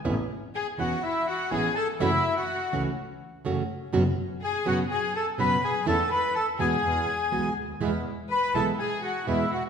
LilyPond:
<<
  \new Staff \with { instrumentName = "Bandoneon" } { \time 4/4 \key a \major \tempo 4 = 124 r4 <gis' gis''>8 <fis' fis''>8 <e' e''>8 <fis' fis''>8 <gis' gis''>8 <a' a''>8 | <e' e''>8. <fis' fis''>4 r2 r16 | r4 <gis' gis''>8 <fis' fis''>8 <gis' gis''>8 <a' a''>8 <b' b''>8 <gis' gis''>8 | <a' a''>8 <b' b''>8 <a' a''>8 <gis' gis''>2 r8 |
r4 <b' b''>8 <a' a''>8 <gis' gis''>8 <fis' fis''>8 <e' e''>8 <fis' fis''>8 | }
  \new Staff \with { instrumentName = "Violin section" } { \time 4/4 \key a \major r4 gis'8 fis'8 e'8 fis'8 gis'8 a'8 | e'8. fis'4 r2 r16 | r4 gis'8 fis'8 gis'8 a'8 b'8 gis'8 | a'8 b'8 a'8 gis'2 r8 |
r4 b'8 a'8 gis'8 fis'8 e'8 fis'8 | }
  \new Staff \with { instrumentName = "Bandoneon" } { \time 4/4 \key a \major r1 | r1 | r1 | r1 |
<gis b e'>8 r4 <gis b e'>8 r4 <gis b e'>8 r8 | }
  \new Staff \with { instrumentName = "Nylon-string guitar" } { \time 4/4 \key a \major <e b cis' e'>8 r4 <e b cis' e'>8 r4 <e b cis' e'>8 r8 | <cis e a cis' fis'>8 r4 <cis e a cis' fis'>8 r4 <cis e a cis' fis'>8 r8 | <b, fis b cis' fis'>8 r4 <b, fis b cis' fis'>8 r4 <b, fis b cis' fis'>8 r8 | <e a cis' e'>8 r4 <b, e gis b fis'>8 r4 <b, e gis b fis'>8 r8 |
<b, e gis b e'>8 r4 <b, e gis b e'>8 r4 <b, e gis b e'>8 r8 | }
  \new Staff \with { instrumentName = "Double bass" } { \clef bass \time 4/4 \key a \major a,,8 r4 e,,8 r4 a,,8 r8 | fis,,8 r4 cis,8 r4 fis,,8 r8 | fis,,8 r4 fis,,8 r4 fis,,8 r8 | e,8 r4 e,8 e,8 r8 b,,8 d,8 |
e,8 r4 b,,8 r4 e,8 r8 | }
>>